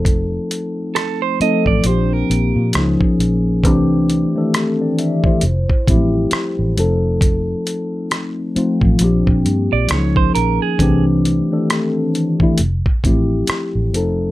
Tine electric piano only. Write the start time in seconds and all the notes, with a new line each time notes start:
Already playing: F3 A3 C4 D#4 A4
1.40 F3 A3 C4 D#4 A4
1.84 F3 A#3 C4 D4 G4
2.75 F3 A#3 C#4 D#4 G#4
3.64 E3 A3 C4 D4 G4
4.35 D#3 A3 C4 D4 A4
4.41 E3
4.81 D5
4.99 G4 E5
5.26 E4 C5
5.87 F3 G3 C4 E4 G4
5.94 A3
6.77 F3 A3 C4 D#4 A4
8.55 F3 A3 C4 D#4 F4
9.01 F3 A#3 C4 D4 G4
9.91 D#3 A#3 C#4 D#4 G#4
9.97 F3
10.79 E3 A3 C4 D4 G4
11.51 D#3 A3 C4 D4 A4
11.57 E3
12.40 E3 A3 C4 D4 E4
13.04 F3 A3 C4 E4 G4
13.94 F3 A3 C4 D#4 A4